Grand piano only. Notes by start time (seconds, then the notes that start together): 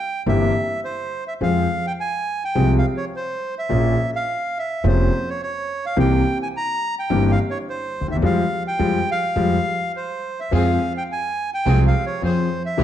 0.26 G1 G2 E3 A#3 C4 G4
1.41 F2 F3 G#3 C4 G#4
2.55 C2 C3 F3 G#3 C4 G#4
3.69 A#1 A#2 F3 A#3 C#4 G#4
4.84 F1 F2 F3 A#3 C#4 G#4
5.96 C2 C3 E3 A#3 C4 G4
7.10 G1 G2 E3 A#3 C4 G4
8.01 D2
8.08 D#2
8.16 E2
8.22 F3 G3 G#3
8.79 F3 G3 G#3
9.36 F3 G3 G#3
10.51 F2 F3 G#3 C4 G#4
11.66 C2 C3 F3 G#3 C4 G#4
12.22 F2 F3
12.77 C2 C3 E3 G3 C4 G4